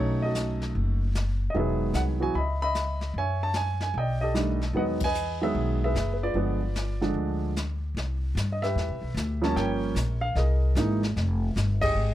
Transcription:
Already playing: upright bass B1, grand piano F#3 A3 C#4 D#4 F#4 A4 C#5
0.22 grand piano F#4 A4 D#5
0.35 snare, hi-hat pedal
0.62 snare
0.75 upright bass F#1, brush sweep
1.15 snare, hi-hat pedal
1.50 grand piano F#3 D#5
1.55 upright bass E1, grand piano D#3 G#3 B3 E5, brush sweep
1.59 grand piano G#4 B4
1.93 upright bass C2, grand piano F#5, snare, hi-hat pedal
2.20 grand piano E3 F#3 B3 F#4 G#5
2.35 upright bass C#2, grand piano D#5 E5 B5, brush sweep
2.62 grand piano D#5 E5 B5
2.75 snare, hi-hat pedal
3.01 snare
3.14 upright bass F#2, brush sweep
3.18 grand piano C#5 E5 G#5
3.43 grand piano A5
3.54 grand piano G#5, snare, hi-hat pedal
3.80 grand piano G#5, snare
3.94 upright bass B1, grand piano G5, brush sweep
3.99 grand piano D5 D#5
4.21 grand piano G4 A4 D#5
4.34 grand piano D#3 G3 A3 D4, snare, hi-hat pedal
4.61 snare
4.73 upright bass E2, grand piano D#3 F#3 G#3 B3 F#5, brush sweep
4.79 grand piano B4 D#5
5.00 kick, ride
5.04 grand piano B4 D#5 G#5
5.15 hi-hat pedal
5.41 grand piano D#3 F#3 G#3 B3 G#4 B4 E5
5.55 upright bass B1, brush sweep
5.84 grand piano G#4 B4 E5
5.95 upright bass F#1, snare, hi-hat pedal
6.14 grand piano B4
6.23 grand piano F4 B4 D5
6.34 upright bass G1, grand piano D3 F3 G#3 B3, brush sweep
6.75 snare, hi-hat pedal
7.01 grand piano D3 F3 G#3 D4, snare
7.14 upright bass D2, brush sweep
7.56 snare, hi-hat pedal
7.95 upright bass C2, brush sweep, snare
8.35 upright bass G2, snare, hi-hat pedal
8.52 grand piano D#5
8.62 grand piano G4 B4 E5, snare
8.75 upright bass E2, brush sweep, snare
8.89 upright bass C2
9.02 upright bass B1
9.14 upright bass D2, snare, hi-hat pedal
9.41 grand piano F3 G3 A#3 C#4 A5, snare
9.55 upright bass G1, grand piano A#4 C#5 G5, brush sweep, snare
9.95 upright bass A#1, snare, hi-hat pedal
10.21 grand piano F5
10.35 upright bass C2, grand piano G#4 A#4 D#5, brush sweep, snare
10.75 upright bass G#1, grand piano E3 G#3 A#3 D#4, snare, hi-hat pedal
11.03 snare
11.16 upright bass F1, brush sweep, snare
11.56 upright bass G1, snare, hi-hat pedal
11.81 grand piano G4 G#4 D#5, kick, ride
11.95 upright bass G#1

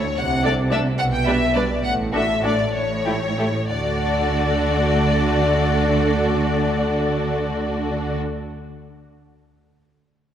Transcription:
Already playing: violin section C#5
0.16 double bass section C2, cello section C3, violin section F#5
0.43 viola section A3 D4, violin section A4 D5
0.71 viola section A3 D4, violin section A4 D5 E5
0.98 double bass section B1, cello section B2, violin section F#5
1.13 violin section G5
1.26 viola section G3 D4, violin section B4 D5 E5
1.55 viola section G3 D4, violin section B4 D5
1.84 double bass section A1, cello section A2, violin section F#5
2.13 viola section A3 D4, violin section F#4 A4 E5
2.42 viola section A3 D4, violin section F#4 A4 D5
2.74 double bass section A1, cello section A2, violin section C#5
3.05 viola section A3 E4, violin section G4 A4
3.37 viola section A3 E4, violin section G4 A4
3.69 double bass section D2, cello section D3, viola section A3 D4, violin section F#4 A4 D5

